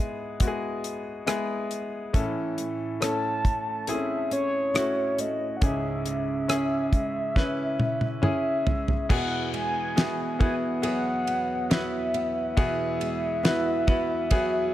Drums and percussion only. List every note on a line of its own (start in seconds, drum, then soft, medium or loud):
0.40 kick medium
0.40 closed hi-hat medium
0.84 closed hi-hat medium
1.27 cross-stick medium
1.27 closed hi-hat medium
1.71 closed hi-hat medium
2.14 kick loud
2.14 closed hi-hat medium
2.58 closed hi-hat medium
3.02 cross-stick medium
3.02 closed hi-hat medium
3.45 kick medium
3.45 closed hi-hat medium
3.87 closed hi-hat medium
4.31 closed hi-hat medium
4.75 cross-stick loud
4.75 closed hi-hat medium
5.18 closed hi-hat medium
5.62 kick loud
5.62 closed hi-hat medium
6.06 closed hi-hat medium
6.49 cross-stick loud
6.49 closed hi-hat medium
6.93 kick medium
6.93 closed hi-hat medium
7.36 kick medium
7.36 snare medium
7.80 high tom medium
8.01 high tom medium
8.23 mid tom medium
8.67 floor tom medium
8.88 floor tom medium
9.10 kick loud
9.10 crash medium
9.54 ride medium
9.98 snare loud
9.98 ride medium
10.41 kick medium
10.41 ride soft
10.83 ride medium
11.27 ride medium
11.71 snare loud
11.71 ride medium
12.14 ride medium
12.57 kick loud
12.57 ride medium
13.01 ride medium
13.45 snare loud
13.45 ride medium
13.88 kick medium
13.88 ride medium
14.31 kick medium
14.31 ride medium